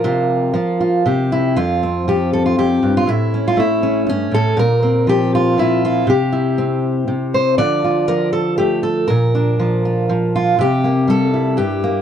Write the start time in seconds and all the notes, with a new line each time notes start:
Already playing: F3 A#4
0.04 C3 F4
0.54 F3 F4
0.80 F4
1.06 C3 G4
1.32 E4
1.56 F2 F4
1.83 C4
2.08 F3 G4
2.33 A4
2.46 F4
2.58 F2 G4
2.83 G2
2.97 F4
3.07 A2 E4
3.34 C#4
3.48 F4
3.57 A3 E4
3.83 C#4
4.07 G2 C#4
4.31 A2 A4
4.57 A#2 A#4
4.83 C4
5.07 F3 G4
5.35 F4
5.58 F3 E4
5.85 F4
6.07 C3 G4
6.32 E4
6.58 C4
7.08 C3
7.34 C5
7.58 D3 F3 F4 D5
7.84 F4
8.08 F3 A#4
8.33 A4
8.58 A3 G4
8.83 A4
9.08 A#2 A#4
9.35 D4
9.59 F3
9.85 F4
10.09 F3
10.36 F4
10.59 C3 G4
10.84 A#3
11.08 G3 A4
11.34 E4
11.57 G2 G4
11.84 A#3